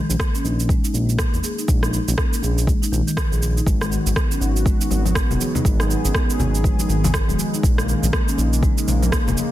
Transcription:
0.10 A#1, shaker
0.20 kick, cross-stick, shaker
0.34 C#4, shaker
0.44 A#1 D#4, shaker
0.60 shaker
0.69 G#3, kick, shaker
0.84 D#4, shaker
0.94 A#1, shaker
1.09 shaker
1.19 kick, cross-stick, shaker
1.34 E1, shaker
1.43 G#4, shaker
1.58 D#4, shaker
1.68 A#1 G#3, kick, shaker
1.83 D#4, cross-stick, shaker
1.93 D#4, shaker
2.08 A#1 C#4, shaker
2.18 A#3, kick, cross-stick, shaker
2.33 shaker
2.43 A#1 G#4, shaker
2.58 shaker
2.67 G#3, kick, shaker
2.82 D#4, shaker
2.92 A#1 D#3, shaker
3.07 D#3, shaker
3.17 kick, cross-stick, shaker
3.32 A#1 G#4, shaker
3.43 shaker
3.57 D#4, shaker
3.66 G#1 D#3 F#3 G#3 B3 F#4, kick, shaker
3.81 cross-stick, muted conga, shaker
3.91 D#3, shaker
4.06 G#1, muted conga, high conga, shaker
4.16 kick, cross-stick, shaker
4.31 C#4, shaker
4.41 G#1 D#4, muted conga, shaker
4.56 shaker
4.65 G#3, kick, muted conga, shaker
4.81 D#4, shaker
4.90 G#1, muted conga, high conga, shaker
5.05 high conga, shaker
5.15 kick, cross-stick, shaker
5.30 D#1, low conga, shaker
5.40 G#4, high conga, shaker
5.55 D#4, muted conga, low conga, shaker
5.65 G#1 G#3 G#4, kick, shaker
5.80 D#4, cross-stick, muted conga, shaker
5.90 D#4, shaker
6.05 G#1 C#4, muted conga, high conga, shaker
6.15 kick, cross-stick, shaker
6.30 shaker
6.39 G#1 G#4, muted conga, low conga, shaker
6.55 shaker
6.64 G#3, kick, muted conga, high conga, shaker
6.79 D#4, high conga, shaker
6.89 G#1 D#3, muted conga, shaker
7.04 high conga, low conga, shaker
7.14 kick, cross-stick, shaker
7.29 D#1 G#3, high conga, shaker
7.38 high conga, shaker
7.53 D#4, muted conga, shaker
7.63 A#1 C#3 G#3 A#3, kick, shaker
7.78 cross-stick, muted conga, shaker
7.88 D#3, shaker
8.03 A#1, muted conga, high conga, shaker
8.13 A#3, kick, cross-stick, shaker
8.28 C#4, shaker
8.38 A#1 D#4, muted conga, shaker
8.53 shaker
8.63 G#3, kick, muted conga, shaker
8.78 D#4, shaker
8.87 A#1, muted conga, high conga, shaker
9.02 high conga, shaker
9.12 A#3, kick, cross-stick, muted conga, shaker
9.27 E1, low conga, shaker
9.37 G#4, high conga, shaker

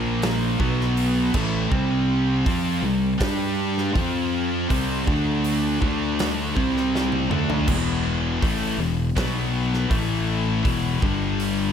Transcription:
Already playing: A#1 A#2 F3 A#3
0.22 snare, open hi-hat
0.60 B1 B2 F#3 B3, kick
0.80 snare
0.97 open hi-hat
1.34 A1 A2 E3 A3, kick, crash
1.71 C2 C3 G3 C4, kick
2.46 F2 F3 C4 F4, kick, open hi-hat
2.82 C2 C3 G3
3.19 G2 G3 D4 G4, kick, snare, open hi-hat
3.23 G4
3.78 snare
3.95 F2 F3 C4 F4, kick, open hi-hat
4.70 C2 C3 G3 C4, kick, open hi-hat
5.07 D2 D3 A3 D4, kick
5.44 open hi-hat
5.82 D2 D3 A3 D4, kick
6.19 snare, open hi-hat
6.57 C2 C3 G3 C4, kick
6.77 snare
6.95 snare
7.12 high tom
7.29 D2 D3 A3 D4, mid tom
7.50 floor tom
7.68 E1 E2 B2 E3, kick, crash
8.43 A1 A2 E3 A3, kick, open hi-hat
8.78 E1 E2 B2
9.16 B1 B2 F#3 B3, kick, snare, open hi-hat
9.73 snare
9.90 A1 A2 E3 A3, kick, open hi-hat
10.65 E1 E2 B2 E3, kick, open hi-hat
11.01 G1 G2 D3 G3, kick
11.39 open hi-hat

